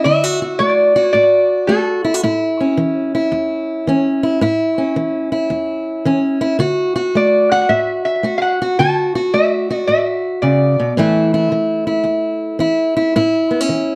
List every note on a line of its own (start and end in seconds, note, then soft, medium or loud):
0.04 0.56 D3 medium
0.04 0.24 E4 medium
0.04 0.61 E5 medium
0.24 0.41 F#4 soft
0.42 0.95 F#4 medium
0.59 1.11 A3 medium
0.59 1.00 D5 loud
0.96 1.68 F#4 medium
1.00 1.11 C#5 loud
1.13 1.65 A2 medium
1.13 1.70 D5 medium
1.67 2.20 A3 medium
1.67 2.04 F#4 medium
1.67 3.83 A4 medium
2.04 2.14 E4 medium
2.14 2.23 F#4 medium
2.23 2.74 A2 medium
2.23 3.14 E4 medium
2.60 3.87 C#4 medium
2.77 3.29 E3 medium
3.15 4.22 E4 medium
3.32 3.83 E2 medium
3.87 4.38 E3 medium
3.87 4.40 C#4 medium
4.23 4.41 E4 medium
4.41 4.93 A2 medium
4.41 5.31 E4 medium
4.78 6.05 C#4 medium
4.96 5.47 E3 medium
5.32 6.40 E4 medium
5.50 6.01 E2 medium
6.05 6.56 E3 medium
6.05 6.58 C#4 medium
6.41 6.59 E4 medium
6.59 7.10 D3 medium
6.59 6.95 F#4 medium
6.96 7.52 F#4 medium
7.15 7.66 A3 medium
7.15 7.53 D5 medium
7.52 8.23 F#4 medium
7.52 7.70 F#5 loud
7.69 8.20 A2 medium
7.69 8.04 E5 medium
8.05 8.37 E5 medium
8.23 8.74 A3 medium
8.23 8.60 F#4 medium
8.38 8.41 F5 medium
8.38 8.79 F#5 medium
8.62 8.77 F#4 medium
8.79 9.30 D3 medium
8.79 9.14 F#4 medium
8.79 9.35 A5 loud
9.15 9.69 F#4 medium
9.34 9.84 A3 medium
9.34 9.86 E5 medium
9.70 10.95 F#4 medium
9.87 10.39 A2 medium
9.87 10.38 E5 medium
10.42 10.78 C#3 medium
10.42 10.93 D5 medium
10.80 10.97 B2 medium
10.97 11.48 A2 medium
10.97 11.51 E3 medium
10.97 13.14 A3 medium
10.97 11.34 E4 medium
11.34 11.86 E4 medium
11.52 12.02 E3 medium
11.87 12.60 E4 medium
12.04 12.56 E2 medium
12.59 13.11 E3 medium
12.59 12.96 E4 medium
12.97 13.16 E4 medium
13.16 13.67 A2 medium
13.16 13.95 E4 medium
13.51 13.61 B3 medium
13.61 13.95 C#4 soft
13.69 13.95 E3 medium